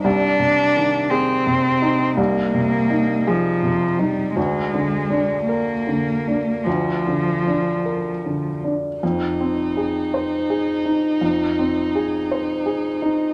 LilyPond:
<<
  \new Staff \with { instrumentName = "Violin" } { \time 6/8 \key f \dorian \tempo 4. = 55 r2. | r2. | r2. | r2. |
ees'2.~ | ees'2. | }
  \new Staff \with { instrumentName = "Upright piano" } { \time 6/8 \key f \dorian c,8 c8 ees8 aes'8 c8 ees'8 | c,8 c8 ees'8 aes'8 c8 ees'8 | d,8 d8 d'8 bes'8 d8 d'8 | d,8 d8 d'8 bes'8 d8 d'8 |
f,8 c'8 aes'8 c''8 aes'8 ees'8 | f,8 c'8 aes'8 c''8 aes'8 ees'8 | }
  \new Staff \with { instrumentName = "Cello" } { \time 6/8 \key f \dorian d'4. c'4. | bes4. f4 g8 | aes4. bes4. | f2~ f8 r8 |
r2. | r2. | }
>>